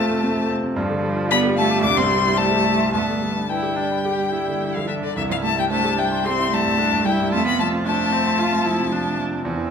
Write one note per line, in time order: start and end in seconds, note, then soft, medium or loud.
0.00 0.73 F2 medium
0.00 0.10 C3 medium
0.00 0.47 A3 loud
0.00 0.24 C4 medium
0.00 0.80 F4 medium
0.00 0.80 C5 medium
0.00 0.80 F5 medium
0.00 0.47 A5 loud
0.00 0.79 F6 medium
0.10 0.32 C3 medium
0.24 0.45 C4 medium
0.37 0.58 C3 medium
0.50 0.72 C4 medium
0.63 0.77 C3 medium
0.76 1.81 G2 loud
0.76 1.32 F3 medium
0.89 1.11 D3 medium
1.03 1.25 G3 medium
1.16 1.38 F4 medium
1.29 2.92 G3 loud
1.29 1.55 B3 loud
1.29 1.51 D5 medium
1.29 1.39 B5 loud
1.43 1.65 G4 medium
1.56 1.84 A3 loud
1.56 1.78 F5 medium
1.56 1.84 A5 loud
1.70 1.84 D6 medium
1.82 2.90 C2 medium
1.82 1.98 D4 loud
1.82 1.99 D6 loud
1.97 2.19 G2 medium
1.97 2.39 C4 medium
1.97 2.39 C6 loud
2.11 2.33 G3 medium
2.25 2.46 E4 medium
2.38 2.93 A3 loud
2.38 2.60 C5 medium
2.38 2.93 A5 loud
2.51 2.73 G4 medium
2.65 2.87 E5 medium
2.79 2.93 C6 medium
2.93 5.12 G2 medium
2.93 3.48 A3 medium
2.93 3.42 B3 medium
2.93 3.51 A5 medium
3.08 3.30 D3 soft
3.22 3.44 G3 medium
3.36 3.58 D4 soft
3.48 4.75 G3 medium
3.48 3.77 E4 medium
3.48 3.71 B4 medium
3.48 4.77 G5 medium
3.63 3.85 G4 medium
3.76 4.03 D4 medium
3.76 3.99 D5 medium
3.92 4.13 B5 soft
4.04 4.31 G4 medium
4.04 4.27 G4 medium
4.20 4.41 D4 medium
4.32 4.55 G3 medium
4.32 4.89 E4 medium
4.48 4.69 D3 soft
4.61 4.83 G3 medium
4.74 4.97 D3 soft
4.74 4.90 F3 medium
4.74 4.88 F5 medium
4.87 5.03 E3 medium
4.87 5.10 G3 medium
4.87 5.14 D4 medium
4.87 4.94 E5 medium
5.02 5.15 D3 medium
5.02 5.16 D3 soft
5.02 5.16 D5 medium
5.15 7.29 C2 medium
5.15 5.21 E3 loud
5.15 5.66 E4 medium
5.15 5.22 E5 loud
5.28 5.52 G2 medium
5.28 5.34 F3 medium
5.28 5.37 F5 medium
5.42 5.66 G3 medium
5.42 5.56 A3 medium
5.42 5.57 A5 loud
5.56 5.69 G3 medium
5.56 5.79 E4 medium
5.56 5.64 G5 medium
5.69 5.97 A3 medium
5.69 6.26 D4 medium
5.69 5.93 C5 medium
5.69 6.00 A5 loud
5.84 6.06 G4 medium
5.98 6.26 G3 medium
5.98 6.20 E5 medium
5.98 6.27 G5 medium
6.11 6.33 C6 medium
6.24 6.50 C4 medium
6.24 6.80 C4 medium
6.24 6.47 G4 medium
6.24 6.55 C6 loud
6.38 6.60 E4 medium
6.50 6.73 G3 medium
6.50 7.06 A3 medium
6.50 7.07 A5 loud
6.64 6.86 G2 medium
6.78 7.00 G3 medium
6.78 7.05 D4 medium
6.92 7.14 G2 medium
7.04 7.31 G3 medium
7.04 7.27 G3 medium
7.04 7.34 E4 medium
7.04 7.32 G5 medium
7.20 7.33 G2 medium
7.31 9.43 F2 medium
7.31 7.46 A3 loud
7.31 7.87 F4 medium
7.31 7.45 A5 loud
7.45 7.68 C3 medium
7.45 7.61 B3 medium
7.45 7.59 B5 loud
7.59 7.81 F3 medium
7.59 7.84 A3 medium
7.59 7.68 A5 medium
7.73 7.94 C4 medium
7.85 9.17 A3 medium
7.85 8.13 D4 medium
7.85 8.07 C5 medium
7.85 9.17 A5 loud
7.99 8.21 F4 medium
8.12 8.40 C4 medium
8.12 8.34 C5 medium
8.26 8.47 C6 medium
8.39 8.60 F4 medium
8.39 8.66 F4 medium
8.52 8.74 C4 medium
8.64 8.87 F3 medium
8.64 8.93 E4 medium
8.79 9.01 C3 medium
8.92 9.14 F3 medium
8.92 9.44 D4 medium
9.05 9.27 C3 medium
9.18 9.40 F3 medium
9.31 9.45 C3 medium
9.45 9.71 E2 medium
9.45 9.71 C4 medium
9.58 9.71 E3 medium